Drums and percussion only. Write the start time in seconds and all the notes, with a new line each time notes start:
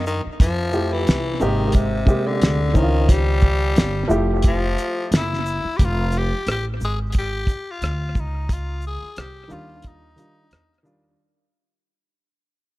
0.07 shaker
0.40 kick, closed hi-hat
0.72 shaker
1.07 snare, closed hi-hat
1.40 shaker
1.72 kick, closed hi-hat
2.07 kick, shaker
2.41 snare, closed hi-hat
2.75 kick, shaker
3.09 kick, closed hi-hat
3.41 kick, shaker
3.76 snare, closed hi-hat
4.10 shaker
4.42 kick, closed hi-hat
4.78 closed hi-hat, shaker
5.12 snare, closed hi-hat
5.33 snare
5.46 shaker
5.79 kick, closed hi-hat
6.12 closed hi-hat, shaker
6.47 cross-stick, closed hi-hat
6.81 shaker
7.12 kick, closed hi-hat
7.47 kick, closed hi-hat, shaker
7.82 cross-stick, closed hi-hat
8.15 kick, shaker
8.49 kick, closed hi-hat
8.82 shaker
9.16 cross-stick, closed hi-hat
9.50 shaker
9.82 kick, closed hi-hat
10.18 closed hi-hat, shaker
10.51 cross-stick, closed hi-hat
10.73 cross-stick
10.86 shaker